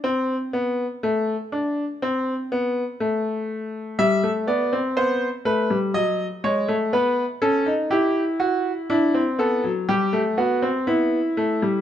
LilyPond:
<<
  \new Staff \with { instrumentName = "Grand piano" } { \time 4/4 \key e \phrygian \tempo 4 = 61 c'8 b8 a8 d'8 c'8 b8 a4 | e''8 d''8 c''8 b'8 dis''8 cis''8 b'8 a'8 | g'8 fis'8 e'8 a'8 g'8 fis'8 e'4 | }
  \new Staff \with { instrumentName = "Grand piano" } { \time 4/4 \key e \phrygian r1 | g16 a16 b16 c'16 b8 a16 g16 fis8 gis16 a16 b8 cis'16 dis'16 | e'4 d'16 c'16 b16 fis16 g16 a16 b16 c'16 b8 a16 g16 | }
>>